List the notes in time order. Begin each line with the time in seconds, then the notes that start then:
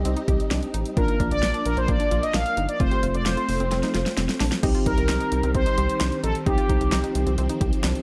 Already playing: G3 C4 D#4 G4
0.05 C2 C4, closed hi-hat
0.17 D#4, closed hi-hat
0.28 C2 G4, kick, closed hi-hat
0.40 closed hi-hat
0.51 C2 D4, snare, closed hi-hat
0.63 closed hi-hat
0.74 A1 D#4, closed hi-hat
0.86 closed hi-hat
0.97 A#1 F3 A#3 D4 F4 A#4, kick, closed hi-hat
1.08 D#4, closed hi-hat
1.20 A#1 D4, kick, closed hi-hat
1.31 A#1 D5, closed hi-hat
1.43 A#1 D4, snare, closed hi-hat
1.54 D4, closed hi-hat
1.66 A#1 A#4, closed hi-hat
1.77 A#1 A#3 C5, closed hi-hat
1.88 A#1 A#3 D5, kick, closed hi-hat
2.00 D4, closed hi-hat
2.11 A#1 F4, closed hi-hat
2.23 D#5, closed hi-hat
2.34 A#1 D4 F5, snare, closed hi-hat
2.46 closed hi-hat
2.57 G1 D#4, closed hi-hat
2.69 D5, closed hi-hat
2.80 F1 F3 A3 C4 F4 C5, kick, closed hi-hat
2.91 G4, closed hi-hat
3.03 F1 F4, closed hi-hat
3.14 F1 D5, closed hi-hat
3.26 F1 F4 C5, snare, closed hi-hat
3.37 F4, closed hi-hat
3.49 F1, open hi-hat
3.60 F1 C4, closed hi-hat
3.71 F1 C4, snare, closed hi-hat
3.83 D#4, snare, closed hi-hat
3.94 F1 F4, snare, closed hi-hat
4.06 snare, closed hi-hat
4.17 F1 C4, snare, closed hi-hat
4.29 snare, closed hi-hat
4.40 A#1 D4, snare, open hi-hat
4.52 snare, closed hi-hat
4.63 C2 D#3 G3 C4 D#4 G4, kick, closed hi-hat, crash
4.75 F4, closed hi-hat
4.86 C2 D#4 A#4, kick, closed hi-hat
4.98 C2, closed hi-hat
5.09 C2 D#4, snare, clap, closed hi-hat
5.20 D#4, closed hi-hat
5.32 C2, closed hi-hat
5.43 C2 C4, closed hi-hat
5.55 C2 C4 C5, kick, closed hi-hat
5.66 D#4, closed hi-hat
5.78 C2 G4, closed hi-hat
5.90 closed hi-hat
6.01 C2 D4, snare, clap, closed hi-hat
6.12 closed hi-hat
6.24 A#1 D#4 A4, closed hi-hat
6.35 closed hi-hat
6.46 C2 F3 C4 D#4 G4, kick, closed hi-hat
6.58 F4, closed hi-hat
6.69 C2 D#4, kick, closed hi-hat
6.81 C2, closed hi-hat
6.92 C2 D#4, snare, clap, closed hi-hat
7.04 D#4, closed hi-hat
7.15 C2, closed hi-hat
7.27 C2 C4, closed hi-hat
7.38 C2 C4, closed hi-hat
7.49 D#4, closed hi-hat
7.61 C2 G4, kick, closed hi-hat
7.73 closed hi-hat
7.84 C2 D4, snare, clap, closed hi-hat
7.95 closed hi-hat